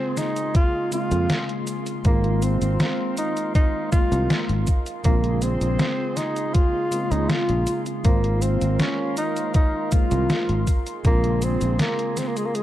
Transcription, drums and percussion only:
0.17 snare, closed hi-hat, cabasa
0.36 closed hi-hat, cabasa
0.55 kick, closed hi-hat, cabasa
0.92 closed hi-hat, cabasa
1.12 closed hi-hat, cabasa
1.30 snare, closed hi-hat, cabasa
1.49 closed hi-hat
1.67 closed hi-hat, cabasa
1.86 closed hi-hat, cabasa
2.05 kick, closed hi-hat, cabasa
2.24 closed hi-hat
2.42 closed hi-hat, cabasa
2.62 closed hi-hat, cabasa
2.80 snare, closed hi-hat, cabasa
3.17 closed hi-hat, cabasa
3.37 closed hi-hat, cabasa
3.55 kick, closed hi-hat, cabasa
3.92 kick, closed hi-hat, cabasa
4.12 closed hi-hat, cabasa
4.30 snare, closed hi-hat, cabasa
4.49 closed hi-hat
4.67 kick, closed hi-hat, cabasa
4.86 closed hi-hat, cabasa
5.04 kick, closed hi-hat, cabasa
5.24 closed hi-hat
5.42 closed hi-hat, cabasa
5.61 closed hi-hat, cabasa
5.79 snare, closed hi-hat, cabasa
6.17 snare, closed hi-hat, cabasa
6.36 closed hi-hat, cabasa
6.55 kick, closed hi-hat, cabasa
6.92 closed hi-hat, cabasa
7.12 closed hi-hat, cabasa
7.30 snare, closed hi-hat, cabasa
7.49 closed hi-hat
7.67 closed hi-hat, cabasa
7.86 closed hi-hat, cabasa
8.05 kick, closed hi-hat, cabasa
8.24 closed hi-hat
8.42 closed hi-hat, cabasa
8.61 closed hi-hat, cabasa
8.79 snare, closed hi-hat, cabasa
9.17 closed hi-hat, cabasa
9.36 closed hi-hat, cabasa
9.54 kick, closed hi-hat, cabasa
9.92 kick, closed hi-hat, cabasa
10.11 closed hi-hat, cabasa
10.30 snare, closed hi-hat, cabasa
10.49 closed hi-hat
10.67 kick, closed hi-hat, cabasa
10.87 closed hi-hat, cabasa
11.05 kick, closed hi-hat, cabasa
11.24 closed hi-hat
11.42 closed hi-hat, cabasa
11.61 closed hi-hat, cabasa
11.79 snare, closed hi-hat, cabasa
11.99 closed hi-hat
12.17 snare, closed hi-hat, cabasa
12.37 closed hi-hat, cabasa
12.55 closed hi-hat, cabasa

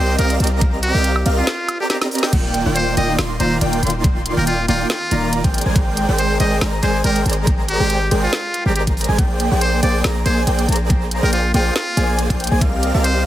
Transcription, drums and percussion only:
0.19 closed hi-hat
0.30 closed hi-hat
0.40 closed hi-hat
0.44 closed hi-hat
0.47 closed hi-hat
0.61 kick, closed hi-hat
0.83 closed hi-hat
1.04 closed hi-hat
1.16 high woodblock
1.26 closed hi-hat
1.47 snare, closed hi-hat
1.69 closed hi-hat, high woodblock
1.90 snare, closed hi-hat
2.02 snare, closed hi-hat, high woodblock
2.11 closed hi-hat, open hi-hat
2.18 closed hi-hat
2.23 snare
2.33 kick, closed hi-hat, crash
2.54 closed hi-hat
2.76 closed hi-hat
2.97 closed hi-hat
3.19 snare, closed hi-hat
3.40 closed hi-hat
3.61 closed hi-hat
3.73 closed hi-hat
3.83 closed hi-hat
3.87 closed hi-hat
3.90 closed hi-hat
4.04 kick, closed hi-hat
4.26 closed hi-hat
4.47 closed hi-hat
4.68 closed hi-hat
4.90 snare, closed hi-hat
5.11 closed hi-hat
5.33 closed hi-hat
5.44 kick, closed hi-hat
5.54 closed hi-hat
5.58 closed hi-hat
5.61 closed hi-hat
5.76 kick, closed hi-hat
5.97 closed hi-hat
6.18 closed hi-hat
6.40 closed hi-hat
6.61 snare, closed hi-hat
6.83 closed hi-hat
7.04 closed hi-hat
7.16 closed hi-hat
7.26 closed hi-hat
7.30 closed hi-hat
7.33 closed hi-hat
7.47 kick, closed hi-hat
7.68 closed hi-hat
7.90 closed hi-hat
8.11 closed hi-hat
8.33 snare, closed hi-hat
8.54 closed hi-hat
8.76 closed hi-hat
8.87 kick, closed hi-hat
8.97 closed hi-hat, open hi-hat
9.04 closed hi-hat
9.19 kick, closed hi-hat
9.40 closed hi-hat
9.61 closed hi-hat
9.83 closed hi-hat
10.04 snare, closed hi-hat
10.26 closed hi-hat
10.47 closed hi-hat
10.59 closed hi-hat
10.69 closed hi-hat
10.72 closed hi-hat
10.76 closed hi-hat
10.90 kick, closed hi-hat
11.11 closed hi-hat
11.33 closed hi-hat
11.54 closed hi-hat
11.76 snare, closed hi-hat
11.97 closed hi-hat
12.19 closed hi-hat
12.30 kick, closed hi-hat
12.40 closed hi-hat
12.44 closed hi-hat
12.47 closed hi-hat
12.61 kick, closed hi-hat
12.83 closed hi-hat
13.04 closed hi-hat

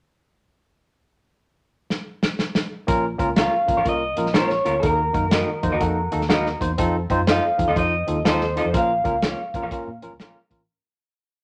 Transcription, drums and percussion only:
1.90 snare
2.23 snare
2.39 snare
2.55 snare
2.88 kick, closed hi-hat
3.19 kick, closed hi-hat
3.36 snare, closed hi-hat
3.68 kick, closed hi-hat
3.86 kick, closed hi-hat
4.17 closed hi-hat
4.26 snare
4.34 snare, closed hi-hat
4.50 snare
4.66 closed hi-hat
4.83 kick, closed hi-hat
5.14 kick, closed hi-hat
5.31 snare, closed hi-hat
5.63 kick, closed hi-hat
5.81 kick, closed hi-hat
6.12 closed hi-hat
6.21 snare
6.30 snare, closed hi-hat
6.46 snare
6.61 kick, closed hi-hat
6.78 kick, closed hi-hat
7.10 kick, closed hi-hat
7.27 snare, closed hi-hat
7.59 kick, closed hi-hat
7.76 kick, closed hi-hat
8.08 closed hi-hat
8.25 snare, closed hi-hat
8.41 snare
8.57 closed hi-hat
8.74 kick, closed hi-hat
9.05 kick, closed hi-hat
9.22 snare, closed hi-hat
9.54 kick, closed hi-hat
9.71 kick, closed hi-hat
10.02 closed hi-hat
10.20 snare, closed hi-hat
10.51 kick, closed hi-hat

